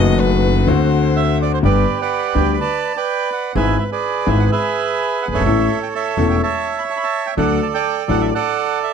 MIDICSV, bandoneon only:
0, 0, Header, 1, 2, 480
1, 0, Start_track
1, 0, Key_signature, 1, "major"
1, 0, Tempo, 479233
1, 1636, Time_signature, 4, 2, 24, 8
1, 8947, End_track
2, 0, Start_track
2, 0, Title_t, "Bandoneon"
2, 0, Program_c, 0, 23
2, 1166, Note_on_c, 0, 76, 98
2, 1385, Note_off_c, 0, 76, 0
2, 1426, Note_on_c, 0, 74, 84
2, 1524, Note_off_c, 0, 74, 0
2, 1540, Note_on_c, 0, 72, 80
2, 1589, Note_off_c, 0, 72, 0
2, 1650, Note_on_c, 0, 71, 56
2, 1650, Note_on_c, 0, 74, 79
2, 1653, Note_on_c, 0, 67, 57
2, 1978, Note_off_c, 0, 74, 0
2, 2008, Note_off_c, 0, 71, 0
2, 2017, Note_on_c, 0, 74, 54
2, 2022, Note_on_c, 0, 78, 80
2, 2023, Note_on_c, 0, 71, 58
2, 2345, Note_off_c, 0, 78, 0
2, 2379, Note_on_c, 0, 79, 82
2, 2526, Note_off_c, 0, 79, 0
2, 2544, Note_on_c, 0, 83, 63
2, 2565, Note_off_c, 0, 67, 0
2, 2595, Note_off_c, 0, 74, 0
2, 2605, Note_off_c, 0, 83, 0
2, 2610, Note_on_c, 0, 74, 68
2, 2613, Note_on_c, 0, 81, 92
2, 2929, Note_off_c, 0, 71, 0
2, 2958, Note_off_c, 0, 74, 0
2, 2973, Note_on_c, 0, 74, 65
2, 2975, Note_off_c, 0, 81, 0
2, 2977, Note_on_c, 0, 79, 90
2, 2980, Note_on_c, 0, 71, 66
2, 3302, Note_off_c, 0, 79, 0
2, 3333, Note_on_c, 0, 78, 75
2, 3525, Note_off_c, 0, 74, 0
2, 3529, Note_off_c, 0, 71, 0
2, 3549, Note_off_c, 0, 78, 0
2, 3567, Note_on_c, 0, 80, 92
2, 3568, Note_on_c, 0, 76, 63
2, 3569, Note_on_c, 0, 71, 62
2, 3776, Note_off_c, 0, 76, 0
2, 3785, Note_off_c, 0, 80, 0
2, 3791, Note_on_c, 0, 76, 76
2, 3846, Note_off_c, 0, 76, 0
2, 3910, Note_off_c, 0, 71, 0
2, 3925, Note_on_c, 0, 71, 61
2, 3926, Note_on_c, 0, 68, 61
2, 3932, Note_on_c, 0, 74, 79
2, 4291, Note_on_c, 0, 76, 81
2, 4293, Note_off_c, 0, 74, 0
2, 4395, Note_off_c, 0, 76, 0
2, 4403, Note_on_c, 0, 78, 86
2, 4455, Note_off_c, 0, 78, 0
2, 4513, Note_off_c, 0, 68, 0
2, 4516, Note_off_c, 0, 71, 0
2, 4525, Note_on_c, 0, 76, 95
2, 4528, Note_on_c, 0, 68, 75
2, 4531, Note_on_c, 0, 71, 72
2, 5233, Note_on_c, 0, 78, 84
2, 5259, Note_off_c, 0, 76, 0
2, 5287, Note_off_c, 0, 78, 0
2, 5349, Note_on_c, 0, 73, 67
2, 5350, Note_on_c, 0, 69, 73
2, 5354, Note_on_c, 0, 76, 92
2, 5438, Note_off_c, 0, 68, 0
2, 5440, Note_off_c, 0, 71, 0
2, 5799, Note_off_c, 0, 76, 0
2, 5836, Note_on_c, 0, 79, 78
2, 5889, Note_off_c, 0, 79, 0
2, 5952, Note_off_c, 0, 73, 0
2, 5960, Note_on_c, 0, 81, 84
2, 5967, Note_on_c, 0, 73, 66
2, 5967, Note_on_c, 0, 76, 65
2, 6269, Note_off_c, 0, 69, 0
2, 6289, Note_off_c, 0, 81, 0
2, 6315, Note_on_c, 0, 79, 82
2, 6367, Note_off_c, 0, 79, 0
2, 6427, Note_off_c, 0, 76, 0
2, 6429, Note_off_c, 0, 73, 0
2, 6440, Note_on_c, 0, 81, 92
2, 6442, Note_on_c, 0, 76, 81
2, 6444, Note_on_c, 0, 73, 79
2, 6797, Note_on_c, 0, 83, 81
2, 6805, Note_off_c, 0, 81, 0
2, 6849, Note_off_c, 0, 83, 0
2, 6913, Note_on_c, 0, 81, 93
2, 6979, Note_on_c, 0, 83, 79
2, 6983, Note_off_c, 0, 81, 0
2, 7049, Note_off_c, 0, 83, 0
2, 7050, Note_on_c, 0, 81, 97
2, 7274, Note_on_c, 0, 79, 83
2, 7276, Note_off_c, 0, 81, 0
2, 7327, Note_off_c, 0, 79, 0
2, 7355, Note_off_c, 0, 76, 0
2, 7356, Note_off_c, 0, 73, 0
2, 7388, Note_on_c, 0, 74, 65
2, 7389, Note_on_c, 0, 78, 92
2, 7392, Note_on_c, 0, 69, 66
2, 7612, Note_off_c, 0, 78, 0
2, 7638, Note_on_c, 0, 81, 79
2, 7690, Note_off_c, 0, 81, 0
2, 7749, Note_off_c, 0, 74, 0
2, 7755, Note_on_c, 0, 79, 90
2, 7764, Note_on_c, 0, 74, 64
2, 8088, Note_off_c, 0, 79, 0
2, 8122, Note_on_c, 0, 78, 89
2, 8222, Note_on_c, 0, 76, 80
2, 8228, Note_off_c, 0, 78, 0
2, 8278, Note_off_c, 0, 76, 0
2, 8312, Note_off_c, 0, 69, 0
2, 8351, Note_off_c, 0, 74, 0
2, 8363, Note_on_c, 0, 78, 96
2, 8366, Note_on_c, 0, 74, 67
2, 8367, Note_on_c, 0, 69, 74
2, 8806, Note_off_c, 0, 78, 0
2, 8849, Note_on_c, 0, 76, 79
2, 8947, Note_off_c, 0, 69, 0
2, 8947, Note_off_c, 0, 74, 0
2, 8947, Note_off_c, 0, 76, 0
2, 8947, End_track
0, 0, End_of_file